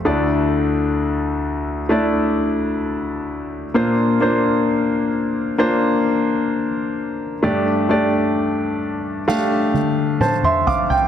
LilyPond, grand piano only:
\new Staff \with { instrumentName = "Grand piano" } { \time 4/4 \key bes \lydian \tempo 4 = 65 << { <d, d>1 | bes,4. r2 r8 | g,4. r4. <c'' a''>16 <e'' c'''>16 <f'' d'''>16 g''16 | } \\ { <a d' e' d''>2 <a d' e' d''>2 | <bes d' f' c''>8 <bes d' f' c''>4. <bes d' f' c''>2 | <a d' g' d''>8 <a d' g' d''>4. <a d' g' f''>2 | } >> }